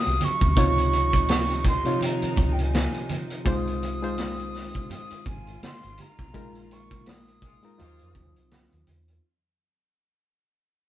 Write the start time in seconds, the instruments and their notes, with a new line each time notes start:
Already playing: string section C3 D#3 F#3 F5, reed electric piano C4 F4 F#4 C#5 D#5, flute D#6
0.06 fingered electric bass C2, closed hi-hat
0.21 flute C#6, closed hi-hat, high conga
0.41 fingered electric bass D2, kick, closed hi-hat
0.56 fingered electric bass C#2, reed electric piano C3 D#4 F4 C#5, string section D#3 F3 D#4, kick, closed hi-hat
0.78 closed hi-hat
0.93 closed hi-hat, muted conga
1.13 kick, closed hi-hat
1.28 snare, closed hi-hat, high conga
1.50 closed hi-hat
1.65 flute C6, kick, closed hi-hat
1.85 reed electric piano C3 D#4 F4 C#5, closed hi-hat
2.01 flute A#5, closed hi-hat, muted conga
2.22 muted fingered electric bass stroke, closed hi-hat
2.36 fingered electric bass C#2, kick, closed hi-hat, muted conga, low conga
2.52 flute G5
2.59 flute G#5, closed hi-hat
2.73 snare, closed hi-hat, high conga
2.94 closed hi-hat
3.09 closed hi-hat, high conga
3.30 closed hi-hat
3.45 fingered electric bass C2, string section D#3 G#3 F4, reed electric piano G#3 D#4 F4 C5, flute D#6, kick, closed hi-hat
3.67 closed hi-hat
3.83 closed hi-hat, muted conga
4.02 reed electric piano G#3 D#4 F4 C5, closed hi-hat
4.18 snare, closed hi-hat, high conga
4.40 closed hi-hat
4.55 snare, open hi-hat
4.74 kick, closed hi-hat
4.90 flute D#6, closed hi-hat, muted conga, low conga
5.10 muted fingered electric bass stroke, closed hi-hat
5.26 fingered electric bass G#1, flute G#5, kick, closed hi-hat, muted conga, low conga
5.47 closed hi-hat
5.63 flute C6, snare, closed hi-hat, high conga
5.83 fingered electric bass G#1, closed hi-hat
5.98 flute A#5, closed hi-hat, high conga
6.19 fingered electric bass B1, kick, closed hi-hat
6.34 fingered electric bass A#1, reed electric piano G#3 D#4 F4 A#4, string section A#3, kick, closed hi-hat
6.55 closed hi-hat
6.71 flute C#6, closed hi-hat, muted conga
6.91 kick, closed hi-hat
7.06 flute D#6, snare, closed hi-hat, high conga
7.28 closed hi-hat
7.42 horn section A#2 G#3 F4, kick, closed hi-hat
7.63 reed electric piano G#3 D#4 F4 A#4, closed hi-hat
7.78 fingered electric bass D#2, horn section C3 A#3 F4, reed electric piano F#3 D#4 F4 C5, string section F#3 C4, closed hi-hat, muted conga, low conga
7.99 fingered electric bass F2, closed hi-hat
8.15 fingered electric bass D#2, kick, closed hi-hat, muted conga, low conga
8.36 fingered electric bass C2, closed hi-hat
8.51 snare, closed hi-hat, high conga
8.72 fingered electric bass D#2, closed hi-hat
8.87 fingered electric bass E2, closed hi-hat, high conga
9.08 closed hi-hat